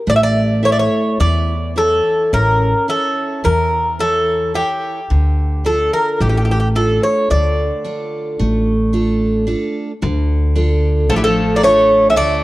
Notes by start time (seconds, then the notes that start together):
0.07 A1 A3 D5
0.16 E5
0.24 D5
0.63 E4 A4 C#5 E5
0.73 D5
0.80 C#5
1.20 E2 E3 D5
1.76 E4 A4 C#5
2.33 A1 C#4 A#4
2.88 E4 A4 C#5
3.44 E2 E3 A#4
3.99 E4 A4 C#5
4.54 E4 G4 A4 C#5
5.10 D2 D3
5.65 D4 F4 A4
5.93 A#4
6.20 A1 A3 G4
6.29 G4
6.37 G4
6.45 G4
6.51 G4
6.60 G4
6.75 D4 F4 A4
7.03 C#5
7.30 D2 D3 D5
7.84 D4 F4 A4
8.39 A1 A3
8.93 D4 F4 A4
9.47 D4 F4 A4
10.02 D2 D3
10.56 D4 F4 A4
11.10 A1 F3 A3 A4
11.17 E3 G4
11.24 F3 A4
11.57 A#3 D5
11.63 A3 D4 F4 A4 C#5
12.10 C#4 E5
12.16 D2 D3 A3 D5